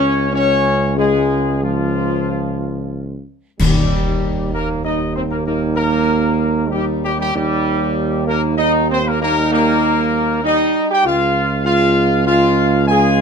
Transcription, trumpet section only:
Already playing: C#5
0.33 C#5
0.99 G#4
1.62 F4
3.59 G4
4.53 A#4
4.83 D#5
5.14 C5
5.30 A#4
5.45 A#4
5.75 A#4
6.71 G4
7.02 G4
7.19 G4
7.35 G4
8.27 A#4
8.58 D#5
8.91 C5
9.06 A#4
9.21 A#4
9.52 A#4
10.45 D#5
10.92 G5
11.05 F5
11.65 F5
12.27 F5
12.87 G#5

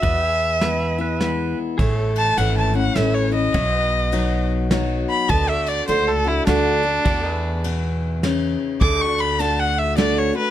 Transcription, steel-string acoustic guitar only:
0.03 E2
0.61 E3 G#3 B3 E4
0.98 B3 E4
1.21 E3 G#3 B3 E4
1.79 A2
2.38 E3 A3 C#4 E4
2.74 C#4 E4
2.95 E3 A3 C#4 E4
3.32 C#4 E4
3.54 B2
4.12 F#3 B3 D#4 F#4
4.71 F#3 B3 D#4 F#4
5.29 D3
5.88 D3 A3 D4 F#4
6.24 D4 F#4
6.47 D3 A3 D4 F#4
6.83 D4 F#4
7.05 E2
7.64 B2
8.24 C#3
8.81 D3
9.39 D3 A3 D4 F#4
9.97 D3 A3 D4 F#4
10.33 D4 F#4

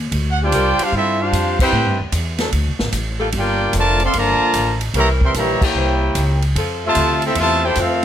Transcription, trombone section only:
0.42 G3 D4 G4
0.81 G3 D4 F4
0.95 E4
1.21 G3 D4 F4
1.61 C4 E4 G4
3.35 A#3 D4 G4
3.76 D3 F3 A3
4.03 C4
4.16 D3 F3 A#3
4.95 E3 G3 A#3
5.24 E3 G3 C4
5.37 E3 G3 A#3
5.63 A#3 E4 G4
6.85 C3 F3 A3
7.25 A3 C4 E4
7.39 C3 E3 A3
7.65 G4
7.79 A3 C4 F4

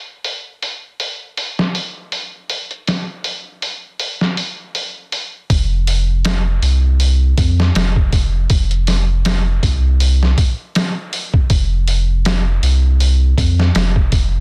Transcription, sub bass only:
5.50 F1
6.62 C2
7.38 F2
7.75 F1
8.50 F1
9.63 C2
11.50 F1
12.62 C2
13.37 F2
13.75 F1

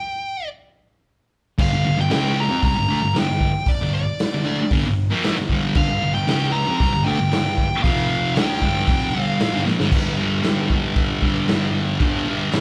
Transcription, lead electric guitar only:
Already playing: G5
1.61 F5
2.01 G5
2.40 A#5
2.65 A#5
3.18 G5
3.68 D5
3.95 D5
5.77 F5
6.15 G5
6.52 A#5
6.77 A#5
7.04 G5
7.83 F5
8.10 F5
8.35 G5
9.21 F5

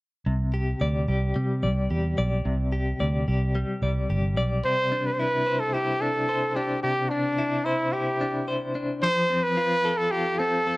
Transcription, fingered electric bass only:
0.26 C2
0.81 D2
1.08 C2
1.36 C3
1.63 C2
1.91 E2
2.18 B1
2.46 C2
3.00 D2
3.28 C2
3.82 C2
4.10 G1
4.37 B1

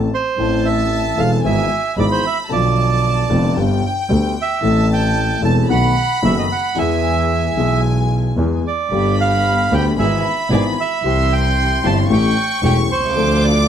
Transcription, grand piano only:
0.37 A1 A2 E3 A3 C4 A4
1.17 E1 E2 E3 A3 C4 A4
1.44 G#1 G#2 E3 G#3 B3 G#4
1.98 G#1 G#2 E3 G#3 B3 G#4
2.49 B1 B2 D3 F3 B3 F4
3.30 F1 F2 D3 F3 B3 F4
3.56 G1 G2 D3 G3 B3 G4
4.09 D2 D3 G3 B3 G4
4.61 A1 A2 E3 A3 C4
4.65 A4
5.42 E1 E2 E3 A3 C4 A4
5.69 B1 B2 D#3 A3 B3 F#4
6.22 F#1 F#2 D#3 A3 B3 F#4
6.75 E2 E3 G#3 B3 G#4
7.56 B1 B2 E3 G#3 B3 G#4
8.38 E2 E3 G#3 B3 G#4
8.91 G1 G2 D3 G3 B3 G4
9.72 D2 D3 G3 B3 G4
9.99 G#1 G#2 E3 G#3 B3 G#4
10.51 G#1 G#2 E3 G#3 B3 G#4
11.03 C2 C3 E3 G3 C4 G4
11.84 G1 G2 E3 G3 C4 G4
12.09 A1 A2 E3 A3 C#4 G4
12.63 E1 E2 E3 A3 C#4 G4
12.96 B1
13.04 C2
13.09 C#2
13.14 D2 D3 F3 A3 D4 A4

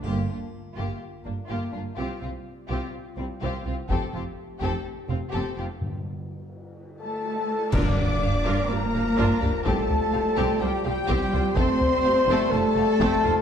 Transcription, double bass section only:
0.04 G1
0.29 G1
0.78 G1
1.26 G1
1.50 G1
1.74 G1
1.98 C2
2.22 C2
2.70 C2
3.18 C2
3.42 C2
3.66 C2
3.90 F1
4.14 F1
4.62 F1
5.10 F1
5.33 F1
5.58 F1
7.74 G2
8.22 G2
8.47 G2
8.70 G2
8.95 G2
9.18 G2
9.42 G2
9.66 C2
10.14 C2
10.38 C2
10.62 C2
10.85 C2
11.09 C2
11.33 C2
11.56 F1
12.05 F1
12.28 F1
12.53 F1
12.76 F1
13.00 F1
13.24 F1

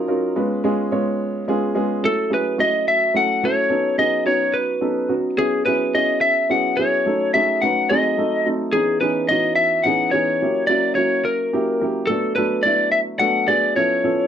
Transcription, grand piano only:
0.08 F#3 C#4 D#4 F4 A#4
0.35 G#3 B3 C#4 F4 B4
0.64 G#3 B3 C#4 F4 G#4
0.92 G#3 B3 C#4 F4 C#5
1.48 G#3 B3 C#4 F4 G#4
1.75 G#3 B3 C#4 F4 G#4
2.03 F#3 A3 C#4 E4 A4
2.30 F#3 A3 C#4 E4 G#4
2.58 F#3 A3 C#4 E4 F#4
3.13 F#3 A3 C#4 E4 A4
3.43 F#3 A3 C#4 E4 A4
3.69 F#3 B3 C#4 D#4 A4
3.98 F#3 B3 C#4 D#4 G#4
4.25 F#3 B3 C#4 D#4 F#4
4.81 F#3 B3 C#4 D#4 A4
5.09 F#3 B3 C#4 D#4 F#4
5.37 F#3 B3 C#4 E4 G#4
5.66 F#3 B3 C#4 E4 G#4
5.94 F#3 B3 C#4 E4 G#4
6.49 F#3 B3 C#4 E4 G#4
6.78 F#3 B3 C#4 E4 G#4
7.06 F#3 A3 C#4 D#4 A4
7.34 F#3 A3 C#4 D#4 G#4
7.62 F#3 A3 C#4 D#4 B4
7.90 F#3 A3 C4 D#4 G#4
8.18 F#3 A3 C4 D#4 A4
8.45 F#3 A3 C4 D#4 A4
8.73 E3 B3 C#4 D#4 G#4
9.01 E3 B3 C#4 D#4 G#4
9.30 E3 B3 C#4 D#4 F#4
9.85 E3 B3 C#4 D#4 G#4
10.13 E3 B3 C#4 D#4 G#4
10.41 F#3 A#3 C#4 E4 G4
10.69 F#3 A#3 C#4 E4 F#4
10.96 F#3 A#3 C#4 E4 F#4
11.53 F#3 A#3 C#4 E4 G4
11.81 F#3 A#3 C#4 E4 G4
12.09 F#3 A3 B3 D4 A4
12.37 F#3 A3 B3 D4 A4
12.64 F#3 A3 B3 D4 E4
13.19 F#3 A3 B3 D4 A4
13.48 F#3 A3 B3 D4 G#4
13.76 F3 B3 C#4 E4 A4
14.04 F3 B3 C#4 E4 A4

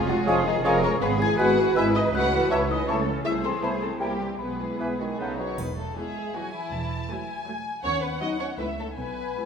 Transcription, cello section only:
Already playing: F4
0.28 G#4
0.65 A#4
1.02 G#4
1.38 B4
2.88 A4
3.26 G#4
4.01 G4
4.40 G#4
5.59 E2
6.73 E2
7.85 D#2
8.59 C#2
8.97 B2

